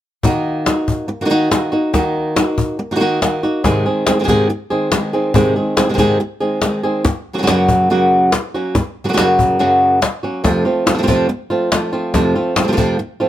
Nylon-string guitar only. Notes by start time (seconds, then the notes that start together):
0.23 D#3 A#3 D#4 F#4
0.66 A#3 D#4 F#4
1.08 muted nylon-string guitar stroke
1.21 D#3 A#3 D#4 F#4
1.25 D#3 A#3 D#4 F#4
1.30 D#3 A#3 D#4 F#4
1.51 D#3 A#3 D#4 F#4
1.72 A#3 D#4 F#4
1.93 D#3 A#3 D#4 F#4
2.36 A#3 D#4 F#4
2.79 muted nylon-string guitar stroke
2.91 D#3 A#3 D#4 F#4
2.96 D#3 A#3 D#4 F#4
3.00 D#3 A#3 D#4 F#4
3.21 D#3 A#3 D#4 F#4
3.43 A#3 D#4 F#4
3.64 G#2 C3 D#3 G#3 C4 G#4
3.86 D#3 G#3 C4 G#4
4.07 D#3 G#3 C4 G#4
4.19 C3 D#3 G#3 C4 G#4
4.24 C3 D#3 G#3 C4 G#4
4.28 G#2 C3 D#3 G#3 C4 G#4
4.49 muted nylon-string guitar stroke
4.70 D#3 G#3 C4 G#4
4.92 D#3 G#3 C4 G#4
5.13 D#3 G#3 C4 G#4
5.34 G#2 C3 D#3 G#3 C4 G#4
5.56 D#3 G#3 C4 G#4
5.77 D#3 G#3 C4 G#4
5.89 C3 D#3 G#3 C4 G#4
5.94 C3 D#3 G#3 C4 G#4
5.98 G#2 C3 D#3 G#3 C4 G#4
6.20 muted nylon-string guitar stroke
6.40 D#3 G#3 C4 G#4
6.62 D#3 G#3 C4 G#4
6.83 D#3 G#3 C4 G#4
7.05 muted nylon-string guitar stroke
7.33 C#3 F#3 A#3 C#4 F#4
7.38 C#3 F#3 A#3 C#4 F#4
7.43 C#3 F#3 A#3 C#4 F#4
7.47 F#2 C#3 F#3 A#3 C#4 F#4
7.90 F#2 C#3 F#3 A#3 C#4 F#4
8.33 muted nylon-string guitar stroke
8.54 F#3 A#3 C#4 F#4
8.75 muted nylon-string guitar stroke
9.04 C#3 F#3 A#3 C#4 F#4
9.09 C#3 F#3 A#3 C#4 F#4
9.13 C#3 F#3 A#3 C#4 F#4
9.18 F#2 C#3 F#3 A#3 C#4 F#4
9.59 F#2 C#3 F#3 A#3 C#4 F#4
10.02 muted nylon-string guitar stroke
10.23 F#3 A#3 C#4 F#4
10.44 F2 C3 F3 A3 C4 F4
10.65 F3 A3 C4 F4
10.86 F3 A3 C4 F4
10.94 C3 F3 A3 C4 F4
10.98 C3 F3 A3 C4 F4
11.03 C3 F3 A3 C4 F4
11.07 F2 C3 F3 A3 C4 F4
11.29 muted nylon-string guitar stroke
11.50 F3 A3 C4 F4
11.71 F3 A3 C4 F4
11.93 F3 A3 C4 F4
12.14 F2 C3 F3 A3 C4 F4
12.35 F3 A3 C4 F4
12.56 F3 A3 C4 F4
12.63 C3 F3 A3 C4 F4
12.68 C3 F3 A3 C4 F4
12.72 C3 F3 A3 C4 F4
12.77 F2 C3 F3 A3 C4 F4
12.99 muted nylon-string guitar stroke
13.20 F3 A3 C4 F4